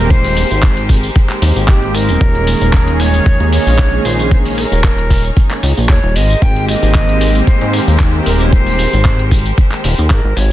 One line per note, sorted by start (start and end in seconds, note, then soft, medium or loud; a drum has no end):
0.00 0.44 D#1 medium
0.00 2.17 G#3 medium
0.00 2.17 G4 medium
0.00 0.12 A#4 loud
0.00 2.17 A#4 medium
0.00 2.17 C5 medium
0.10 0.30 D#3 medium
0.10 0.30 G#3 medium
0.10 0.30 A#3 medium
0.10 0.30 C4 medium
0.10 0.31 G4 medium
0.10 1.16 C5 loud
0.10 kick loud
0.10 closed hi-hat medium
0.10 tambourine soft
0.24 open hi-hat medium
0.37 open hi-hat loud
0.37 tambourine medium
0.51 1.10 G#1 medium
0.51 closed hi-hat soft
0.51 tambourine soft
0.63 kick loud
0.63 clap loud
0.63 closed hi-hat medium
0.63 tambourine soft
0.77 closed hi-hat medium
0.89 kick medium
0.89 open hi-hat loud
0.89 tambourine medium
1.03 closed hi-hat medium
1.03 tambourine soft
1.15 1.35 D#3 medium
1.15 1.35 G#3 medium
1.15 1.35 A#3 medium
1.15 1.36 C4 medium
1.15 1.36 G4 loud
1.15 kick loud
1.15 closed hi-hat medium
1.15 tambourine soft
1.29 clap soft
1.29 closed hi-hat soft
1.41 1.52 D#2 loud
1.41 1.79 D#3 medium
1.41 1.79 G#3 medium
1.41 1.79 A#3 medium
1.41 1.79 C4 medium
1.41 1.79 G4 loud
1.41 open hi-hat loud
1.41 tambourine medium
1.56 2.10 G#1 medium
1.56 closed hi-hat soft
1.56 tambourine soft
1.68 1.97 G4 medium
1.68 kick loud
1.68 clap loud
1.68 closed hi-hat medium
1.68 tambourine soft
1.82 1.91 D#3 medium
1.82 1.92 G#3 medium
1.82 1.92 A#3 medium
1.82 1.92 C4 medium
1.82 1.92 G4 loud
1.82 closed hi-hat soft
1.94 2.18 D#3 medium
1.94 2.18 G#3 medium
1.94 2.18 A#3 medium
1.94 2.18 C4 medium
1.94 2.18 G#4 loud
1.94 3.02 A#4 loud
1.94 open hi-hat loud
1.94 tambourine medium
2.09 2.18 D#1 loud
2.09 closed hi-hat soft
2.09 tambourine soft
2.20 2.55 D#1 loud
2.20 3.63 D#3 loud
2.20 3.63 G#3 medium
2.20 3.63 A#3 medium
2.20 3.63 C#4 medium
2.20 6.12 D#4 medium
2.20 6.12 G#4 medium
2.20 3.64 G#4 loud
2.20 6.12 C#5 medium
2.20 kick loud
2.20 closed hi-hat medium
2.20 tambourine soft
2.35 closed hi-hat soft
2.47 open hi-hat loud
2.47 tambourine medium
2.61 3.21 D#1 medium
2.61 closed hi-hat soft
2.61 tambourine soft
2.73 kick loud
2.73 clap loud
2.73 closed hi-hat medium
2.73 tambourine soft
2.88 closed hi-hat medium
3.00 3.53 C#5 loud
3.00 open hi-hat loud
3.00 tambourine medium
3.14 closed hi-hat medium
3.14 tambourine soft
3.26 3.37 D#2 soft
3.26 kick loud
3.26 closed hi-hat medium
3.26 tambourine soft
3.40 3.59 D#2 loud
3.40 closed hi-hat soft
3.53 4.07 C#5 loud
3.53 open hi-hat loud
3.53 tambourine medium
3.66 4.00 A#1 loud
3.66 4.28 D#3 loud
3.66 4.28 G#3 medium
3.66 4.29 A#3 medium
3.66 4.29 C#4 medium
3.66 4.29 G#4 loud
3.66 tambourine soft
3.79 kick loud
3.79 clap loud
3.79 closed hi-hat medium
4.05 4.65 A#1 medium
4.05 4.32 C5 loud
4.05 open hi-hat loud
4.05 tambourine medium
4.19 closed hi-hat soft
4.19 tambourine soft
4.31 4.51 D#3 medium
4.31 4.51 G#3 medium
4.31 4.51 A#3 medium
4.31 4.52 C#4 medium
4.31 4.52 G#4 medium
4.31 4.38 C5 loud
4.31 kick loud
4.31 closed hi-hat medium
4.31 tambourine soft
4.46 open hi-hat medium
4.58 5.59 A#4 loud
4.58 open hi-hat loud
4.58 tambourine medium
4.72 5.31 D#1 medium
4.72 closed hi-hat soft
4.72 tambourine soft
4.84 kick loud
4.84 clap loud
4.84 closed hi-hat medium
4.84 tambourine soft
4.98 closed hi-hat medium
5.10 kick medium
5.10 open hi-hat loud
5.10 tambourine medium
5.24 closed hi-hat medium
5.24 tambourine soft
5.36 5.56 D#3 medium
5.36 5.56 G#3 medium
5.36 5.57 A#3 medium
5.36 5.57 C#4 medium
5.36 5.57 G#4 loud
5.36 kick loud
5.36 closed hi-hat medium
5.36 tambourine soft
5.51 clap soft
5.51 closed hi-hat soft
5.63 5.73 C#2 loud
5.63 open hi-hat loud
5.63 tambourine medium
5.77 5.91 A#1 medium
5.77 tambourine soft
5.89 5.99 D#2 loud
5.89 6.17 C#5 loud
5.89 kick loud
5.89 clap loud
5.89 closed hi-hat medium
6.04 6.17 D#1 medium
6.16 6.35 G#1 loud
6.16 10.53 G#3 medium
6.16 10.53 G4 medium
6.16 10.53 A#4 medium
6.16 10.53 C5 medium
6.16 6.44 D#5 loud
6.16 open hi-hat loud
6.16 tambourine medium
6.30 closed hi-hat soft
6.30 tambourine soft
6.41 6.76 G#1 loud
6.41 7.84 D#3 medium
6.41 7.84 G#3 medium
6.41 7.84 A#3 medium
6.41 7.85 C4 medium
6.41 7.85 G4 loud
6.41 6.68 G5 loud
6.41 kick loud
6.41 closed hi-hat medium
6.41 tambourine soft
6.56 closed hi-hat soft
6.69 7.49 D#5 loud
6.69 open hi-hat loud
6.69 tambourine medium
6.83 7.42 G#1 medium
6.83 closed hi-hat soft
6.83 tambourine soft
6.94 kick loud
6.94 clap loud
6.94 closed hi-hat medium
7.09 closed hi-hat medium
7.21 open hi-hat loud
7.21 tambourine medium
7.35 closed hi-hat medium
7.35 tambourine soft
7.47 7.59 G#2 soft
7.47 8.00 C5 medium
7.47 kick loud
7.47 closed hi-hat medium
7.47 tambourine soft
7.61 7.80 G#2 loud
7.61 closed hi-hat soft
7.73 open hi-hat loud
7.73 tambourine medium
7.87 8.21 D#2 loud
7.87 8.49 D#3 loud
7.87 8.49 G#3 medium
7.87 8.50 A#3 medium
7.87 8.50 C4 medium
7.87 8.50 G4 loud
7.87 tambourine soft
7.99 kick loud
7.99 clap loud
7.99 closed hi-hat medium
7.99 tambourine soft
8.26 8.87 D#1 medium
8.26 8.48 A#4 loud
8.26 open hi-hat loud
8.26 tambourine medium
8.40 closed hi-hat soft
8.40 tambourine soft
8.46 8.54 C#5 medium
8.52 8.72 D#3 medium
8.52 8.72 G#3 medium
8.52 8.72 A#3 medium
8.52 8.73 C4 medium
8.52 8.73 G4 medium
8.52 9.58 C5 loud
8.52 kick loud
8.52 closed hi-hat medium
8.52 tambourine soft
8.67 open hi-hat medium
8.79 open hi-hat loud
8.79 tambourine medium
8.93 9.52 G#1 medium
8.93 closed hi-hat soft
8.93 tambourine soft
9.05 kick loud
9.05 clap loud
9.05 closed hi-hat medium
9.19 closed hi-hat medium
9.31 kick medium
9.31 open hi-hat loud
9.31 tambourine medium
9.46 closed hi-hat soft
9.46 tambourine soft
9.58 9.77 D#3 medium
9.58 9.77 G#3 medium
9.58 9.78 A#3 medium
9.58 9.78 C4 medium
9.58 9.78 G4 loud
9.58 kick loud
9.58 closed hi-hat medium
9.58 tambourine soft
9.71 clap soft
9.71 closed hi-hat soft
9.84 9.94 D#1 medium
9.84 open hi-hat loud
9.84 tambourine medium
9.98 10.12 D#2 medium
9.98 closed hi-hat soft
9.98 tambourine soft
10.10 10.21 G#2 loud
10.10 10.38 A#4 medium
10.10 kick loud
10.10 clap loud
10.10 closed hi-hat medium
10.25 10.33 G#1 medium
10.37 10.53 G#1 loud
10.37 10.53 C#5 loud
10.37 open hi-hat loud
10.37 tambourine medium